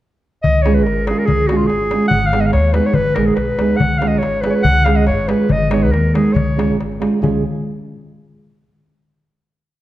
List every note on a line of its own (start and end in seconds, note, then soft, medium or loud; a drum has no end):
0.43 0.86 C#2 medium
0.43 0.64 D#5 medium
0.43 darbuka dum medium
0.62 0.83 G#3 medium
0.62 0.83 C#4 medium
0.62 0.83 F4 soft
0.62 0.76 C#5 medium
0.62 darbuka tek medium
0.67 0.84 G#4 medium
0.74 0.85 B4 medium
0.84 1.11 G#1 medium
0.84 1.08 A#4 medium
0.84 darbuka tek soft
0.98 darbuka tek soft
1.07 1.26 G#3 soft
1.07 1.26 C#4 soft
1.07 1.26 F4 medium
1.07 1.20 G#4 medium
1.07 darbuka tek medium
1.11 1.27 G#4 medium
1.19 1.27 A#4 medium
1.19 darbuka tek soft
1.26 1.69 C#2 medium
1.26 1.49 G#4 medium
1.26 darbuka dum medium
1.47 1.68 G#3 medium
1.47 1.68 C#4 medium
1.47 1.59 F#4 medium
1.47 darbuka tek medium
1.51 1.68 F4 soft
1.51 1.68 G#4 medium
1.57 1.69 F4 medium
1.67 1.94 G#1 medium
1.67 2.07 G#4 medium
1.67 darbuka tek soft
1.81 darbuka tek soft
1.91 2.09 G#3 medium
1.91 2.09 C#4 soft
1.91 2.10 F4 soft
1.91 2.10 G#4 medium
1.91 darbuka tek medium
2.02 darbuka tek soft
2.08 2.54 G#1 medium
2.08 2.28 F#5 loud
2.08 darbuka dum medium
2.26 2.42 F5 medium
2.33 2.51 G#3 medium
2.33 2.51 B3 medium
2.33 2.51 D#4 medium
2.33 2.51 G#4 medium
2.33 darbuka tek medium
2.41 2.48 D#5 medium
2.46 2.48 F5 medium
2.52 2.79 D#2 medium
2.52 2.74 C#5 medium
2.52 darbuka tek medium
2.64 darbuka tek soft
2.73 2.92 G#3 medium
2.73 2.93 B3 soft
2.73 2.93 D#4 soft
2.73 2.93 G#4 medium
2.73 2.88 B4 medium
2.73 darbuka tek medium
2.86 2.96 C#5 medium
2.94 3.17 G#1 medium
2.94 3.17 B4 medium
2.94 darbuka dum medium
3.05 darbuka tek soft
3.15 3.36 A#1 medium
3.15 3.34 G#3 medium
3.15 3.35 B3 soft
3.15 3.35 D#4 medium
3.15 3.36 G#4 medium
3.15 3.27 A#4 medium
3.15 darbuka tek medium
3.26 3.35 G#4 medium
3.26 darbuka tek soft
3.35 3.57 B1 medium
3.35 3.78 B4 medium
3.35 darbuka tek medium
3.49 darbuka tek soft
3.59 3.78 C#2 medium
3.59 3.77 G#3 medium
3.59 3.77 B3 soft
3.59 3.78 D#4 soft
3.59 3.78 G#4 soft
3.59 darbuka tek medium
3.70 darbuka tek soft
3.77 4.23 C#2 medium
3.77 4.00 F#5 medium
3.77 darbuka dum medium
3.98 4.18 G#3 medium
3.98 4.19 C#4 medium
3.98 4.19 F4 medium
3.98 4.20 G#4 medium
3.98 4.09 F5 medium
3.98 darbuka tek medium
4.07 4.20 D#5 medium
4.18 4.43 C#5 medium
4.23 4.49 G#1 medium
4.23 darbuka tek medium
4.34 darbuka tek soft
4.41 4.62 G#3 soft
4.41 4.62 C#4 medium
4.41 4.51 B4 medium
4.41 darbuka tek medium
4.45 4.62 F4 soft
4.45 4.63 G#4 medium
4.50 4.64 B4 medium
4.50 4.54 C#5 medium
4.55 darbuka tek soft
4.63 5.09 C#2 medium
4.63 4.87 F#5 loud
4.63 darbuka dum medium
4.85 5.03 G#3 medium
4.85 5.04 C#4 medium
4.85 5.04 F4 medium
4.85 5.05 G#4 medium
4.85 4.98 F5 medium
4.85 darbuka tek medium
4.96 5.06 D#5 medium
5.07 5.33 G#1 medium
5.07 5.30 C#5 medium
5.07 darbuka tek medium
5.18 darbuka tek soft
5.28 5.46 G#3 medium
5.28 5.46 C#4 soft
5.28 5.47 F4 soft
5.28 5.47 G#4 medium
5.28 5.53 B4 medium
5.28 darbuka tek medium
5.39 darbuka tek soft
5.49 5.91 G#1 medium
5.49 5.71 D#5 medium
5.49 darbuka dum medium
5.70 5.89 G#3 medium
5.70 5.89 B3 soft
5.70 5.89 D#4 medium
5.70 5.90 G#4 medium
5.70 5.84 C#5 medium
5.70 5.74 D#5 medium
5.70 darbuka tek medium
5.82 5.94 B4 medium
5.91 6.18 D#2 medium
5.91 6.16 A#4 medium
5.91 darbuka tek medium
6.05 darbuka tek soft
6.14 6.32 G#3 medium
6.14 6.32 B3 soft
6.14 6.33 D#4 medium
6.14 6.35 G#4 medium
6.14 6.33 G#4 soft
6.14 darbuka tek medium
6.27 darbuka tek soft
6.34 6.78 C#2 medium
6.34 6.78 C#5 medium
6.34 darbuka dum medium
6.56 6.75 G#3 medium
6.56 6.75 C#4 medium
6.56 6.76 F4 soft
6.56 6.76 G#4 medium
6.56 darbuka tek medium
6.78 7.04 G#1 medium
6.78 darbuka tek soft
6.92 darbuka tek soft
7.00 7.18 G#3 soft
7.00 7.18 C#4 medium
7.00 7.19 F4 soft
7.00 7.19 G#4 medium
7.00 darbuka tek medium
7.14 darbuka tek soft
7.22 7.42 C#2 medium
7.22 7.42 G#3 medium
7.22 7.43 C#4 medium
7.22 7.43 F4 medium
7.22 7.43 G#4 medium
7.22 darbuka dum medium